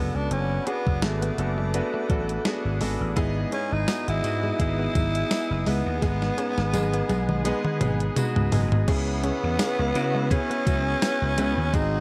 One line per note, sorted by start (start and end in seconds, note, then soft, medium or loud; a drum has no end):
0.00 0.17 B3 medium
0.00 0.54 B3 medium
0.00 0.54 D4 medium
0.00 0.54 F#4 medium
0.00 0.54 A4 medium
0.00 3.13 B4 medium
0.00 3.13 F#5 medium
0.00 3.13 D6 medium
0.15 0.27 C#2 medium
0.15 0.31 D4 medium
0.31 0.58 F#1 loud
0.31 0.69 C#4 medium
0.31 0.45 D4 medium
0.31 closed hi-hat medium
0.51 muted clean electric guitar stroke soft
0.66 0.94 B3 medium
0.66 1.05 B3 medium
0.66 0.81 C#4 medium
0.66 0.94 D4 medium
0.66 0.94 F#4 medium
0.66 0.94 G#4 medium
0.66 closed hi-hat medium
0.87 0.99 F#1 medium
0.87 kick medium
1.02 1.29 G#1 medium
1.02 2.82 A3 medium
1.02 1.29 B3 medium
1.02 1.30 D4 medium
1.02 1.30 F#4 medium
1.02 1.30 G#4 medium
1.02 snare loud
1.02 closed hi-hat medium
1.22 1.33 B3 medium
1.22 closed hi-hat medium
1.38 1.80 F#1 medium
1.38 1.65 B3 medium
1.38 1.65 D4 medium
1.38 1.66 F#4 medium
1.38 1.66 A4 medium
1.38 muted clean electric guitar stroke soft
1.38 closed hi-hat medium
1.58 1.69 G#3 medium
1.74 2.01 B3 medium
1.74 2.01 D4 medium
1.74 2.01 F#4 medium
1.74 2.01 B4 loud
1.74 muted clean electric guitar stroke soft
1.74 closed hi-hat medium
1.94 2.05 A3 medium
2.09 2.36 A1 medium
2.09 2.23 F#3 medium
2.09 2.36 B3 medium
2.09 2.37 D4 medium
2.09 2.37 F#4 medium
2.09 2.37 A4 loud
2.09 2.43 D5 medium
2.09 kick medium
2.09 closed hi-hat medium
2.29 closed hi-hat soft
2.45 2.72 B3 medium
2.45 2.72 D4 medium
2.45 2.73 F#4 medium
2.45 2.73 G#4 medium
2.45 2.79 F#5 medium
2.45 snare loud
2.45 closed hi-hat medium
2.65 2.77 G#1 medium
2.81 2.96 G#1 medium
2.81 2.95 G#3 medium
2.81 3.08 B3 medium
2.81 3.08 D4 medium
2.81 3.08 F#4 medium
2.81 3.08 A4 medium
2.81 3.14 G#5 medium
2.81 open hi-hat medium
3.01 3.13 A1 medium
3.16 3.43 G#1 loud
3.16 4.20 G#2 medium
3.16 3.44 B3 loud
3.16 3.44 D#4 loud
3.16 3.44 E4 loud
3.16 3.31 E4 medium
3.16 6.00 G#4 medium
3.16 3.44 G#4 loud
3.16 6.00 D#5 medium
3.16 8.84 D#6 medium
3.16 kick loud
3.16 closed hi-hat medium
3.16 tambourine medium
3.37 muted clean electric guitar stroke soft
3.52 3.79 B3 medium
3.52 3.66 C#4 medium
3.52 3.74 C#4 medium
3.52 3.80 D#4 medium
3.52 3.80 E4 medium
3.52 3.80 G#4 medium
3.52 closed hi-hat medium
3.72 3.84 G#1 loud
3.72 4.08 D#4 loud
3.88 4.15 B3 medium
3.88 4.15 D#4 medium
3.88 4.15 E4 medium
3.88 4.16 F#4 medium
3.88 snare loud
3.88 closed hi-hat medium
3.88 tambourine medium
4.08 4.20 G#1 medium
4.08 4.19 B3 medium
4.08 4.56 E4 loud
4.08 closed hi-hat medium
4.23 4.51 G#2 medium
4.23 4.51 B3 medium
4.23 4.51 D#4 medium
4.23 4.51 E4 medium
4.23 4.51 F#4 medium
4.23 muted clean electric guitar stroke soft
4.23 closed hi-hat medium
4.23 tambourine soft
4.44 4.55 G#3 medium
4.59 4.86 G#1 medium
4.59 4.86 B3 medium
4.59 4.87 D#4 medium
4.59 4.87 E4 medium
4.59 5.63 E4 loud
4.59 4.87 G#4 loud
4.59 muted clean electric guitar stroke soft
4.59 kick medium
4.59 closed hi-hat medium
4.59 tambourine soft
4.79 4.90 B3 medium
4.95 5.22 G#1 medium
4.95 5.09 F#3 medium
4.95 5.22 B3 medium
4.95 5.22 D#4 medium
4.95 5.23 E4 medium
4.95 5.23 G#4 medium
4.95 kick medium
4.95 closed hi-hat medium
4.95 tambourine soft
5.15 closed hi-hat soft
5.30 5.58 B3 medium
5.30 5.58 D#4 medium
5.30 5.58 E4 medium
5.30 5.59 G#4 medium
5.30 snare loud
5.30 closed hi-hat medium
5.30 tambourine medium
5.51 5.63 F#1 medium
5.66 5.81 C#2 medium
5.66 5.80 G#3 medium
5.66 5.94 B3 medium
5.66 8.13 B3 medium
5.66 5.94 D#4 medium
5.66 5.94 E4 medium
5.66 5.94 B4 medium
5.66 open hi-hat medium
5.66 tambourine soft
5.86 5.98 D#2 medium
6.02 6.29 G#1 loud
6.02 7.06 G#2 medium
6.02 6.29 G#3 loud
6.02 6.16 G#3 medium
6.02 6.30 B3 medium
6.02 6.30 D#4 medium
6.02 6.30 G#4 loud
6.02 8.85 B4 medium
6.02 8.85 G#5 medium
6.02 kick loud
6.02 snare medium
6.02 closed hi-hat medium
6.02 tambourine soft
6.22 muted clean electric guitar stroke soft
6.22 snare medium
6.37 6.65 G#3 medium
6.37 6.65 B3 medium
6.37 6.52 C#4 medium
6.37 6.65 D#4 medium
6.37 6.66 G#4 medium
6.37 closed hi-hat medium
6.37 tambourine soft
6.58 6.70 G#1 loud
6.58 snare medium
6.73 7.01 G#1 medium
6.73 7.01 G#3 medium
6.73 7.01 B3 medium
6.73 7.01 D#4 medium
6.73 7.01 G#4 medium
6.73 closed hi-hat medium
6.73 high tom medium
6.73 tambourine medium
6.94 7.05 B3 medium
6.94 closed hi-hat medium
7.09 7.51 B1 loud
7.09 7.36 G#3 medium
7.09 7.37 B3 medium
7.09 7.37 D#4 medium
7.09 7.37 G#4 medium
7.09 muted clean electric guitar stroke soft
7.09 closed hi-hat medium
7.09 high tom medium
7.09 tambourine soft
7.29 7.41 G#3 medium
7.29 mid tom medium
7.45 7.72 G#3 loud
7.45 7.72 B3 loud
7.45 7.73 D#4 loud
7.45 7.73 G#4 loud
7.45 muted clean electric guitar stroke soft
7.45 closed hi-hat medium
7.45 tambourine soft
7.65 7.76 B3 medium
7.65 mid tom medium
7.80 8.08 G#1 medium
7.80 7.95 F#3 medium
7.80 8.08 G#3 medium
7.80 8.08 B3 medium
7.80 8.08 D#4 medium
7.80 8.08 G#4 loud
7.80 closed hi-hat medium
7.80 mid tom medium
7.80 tambourine soft
8.00 closed hi-hat soft
8.16 8.44 G#3 medium
8.16 8.44 B3 medium
8.16 8.44 D#4 medium
8.16 8.44 F#4 loud
8.16 closed hi-hat medium
8.16 mid tom medium
8.16 tambourine medium
8.36 8.48 C#2 medium
8.36 floor tom medium
8.52 8.67 F#1 medium
8.52 8.79 G#3 medium
8.52 8.66 G#3 medium
8.52 8.79 B3 medium
8.52 8.80 D#4 medium
8.52 8.80 G#4 medium
8.52 floor tom loud
8.52 open hi-hat medium
8.52 tambourine soft
8.72 8.84 G#1 medium
8.72 floor tom medium
8.88 9.30 C#2 loud
8.88 9.91 C#3 medium
8.88 9.15 B3 medium
8.88 10.33 B3 loud
8.88 9.02 C#4 medium
8.88 9.15 C#4 medium
8.88 9.15 E4 medium
8.88 9.16 G#4 loud
8.88 11.71 B4 medium
8.88 11.71 E5 medium
8.88 11.71 C#6 medium
8.88 kick loud
8.88 closed hi-hat medium
8.88 crash medium
8.88 tambourine medium
9.08 muted clean electric guitar stroke soft
9.23 9.51 B3 medium
9.23 9.51 C#4 medium
9.23 9.37 C#4 medium
9.23 9.51 E4 medium
9.23 9.51 G#4 medium
9.23 closed hi-hat medium
9.23 tambourine soft
9.43 9.56 E2 medium
9.59 9.86 B3 medium
9.59 9.87 C#4 medium
9.59 9.87 E4 medium
9.59 9.87 G#4 medium
9.59 snare loud
9.59 closed hi-hat medium
9.59 tambourine medium
9.79 9.91 C#2 medium
9.79 9.90 B3 medium
9.95 10.37 C#3 loud
9.95 10.22 B3 medium
9.95 10.22 C#4 medium
9.95 10.23 E4 medium
9.95 10.23 F#4 medium
9.95 muted clean electric guitar stroke soft
9.95 closed hi-hat medium
9.95 tambourine soft
10.15 10.26 G#3 medium
10.30 10.58 B3 loud
10.30 10.58 C#4 medium
10.30 11.76 C#4 loud
10.30 10.58 E4 medium
10.30 10.58 G#4 loud
10.30 muted clean electric guitar stroke soft
10.30 kick medium
10.30 closed hi-hat medium
10.30 tambourine soft
10.50 10.62 B3 medium
10.50 closed hi-hat medium
10.66 10.93 C#2 medium
10.66 10.80 F#3 medium
10.66 10.94 B3 medium
10.66 10.94 C#4 medium
10.66 10.94 E4 medium
10.66 10.94 F#4 medium
10.66 kick medium
10.66 closed hi-hat medium
10.66 tambourine medium
11.02 11.29 B3 medium
11.02 11.29 C#4 medium
11.02 11.30 E4 medium
11.02 11.30 B4 medium
11.02 snare loud
11.02 closed hi-hat medium
11.02 tambourine medium
11.22 11.34 C#2 medium
11.37 11.53 C#2 medium
11.37 11.52 G#3 medium
11.37 11.65 B3 medium
11.37 11.65 C#4 medium
11.37 11.65 E4 medium
11.37 11.66 B4 medium
11.37 closed hi-hat medium
11.37 tambourine soft
11.58 11.70 D#2 medium
11.73 12.00 G#1 loud
11.73 12.00 G#2 medium
11.73 11.88 G#3 medium
11.73 12.00 C4 loud
11.73 12.00 D#4 medium
11.73 12.00 D#4 loud
11.73 12.00 F#4 medium
11.73 12.00 G#4 medium
11.73 12.00 G#4 loud
11.73 12.00 F#5 medium
11.73 12.00 C6 loud
11.73 kick loud
11.73 closed hi-hat medium
11.73 tambourine medium
11.94 muted clean electric guitar stroke soft